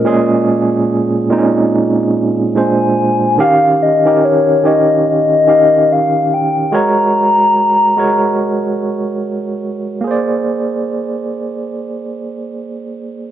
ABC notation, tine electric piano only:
X:1
M:4/4
L:1/16
Q:"Swing 16ths" 1/4=72
K:Ebdor
V:1 name="Tine electric piano"
[B,,A,DA]4- [B,,A,DA] z [B,,A,CDE]6 [B,,A,=Dc]3 z | [E,D=Gf]2 z [E,DGB]2 z [E,DGd]3 z [E,DGf]4- [E,DGf] z | [A,GBd]4- [A,GBd] z [A,GBd]6 z4 | [B,Ac=d]16 |]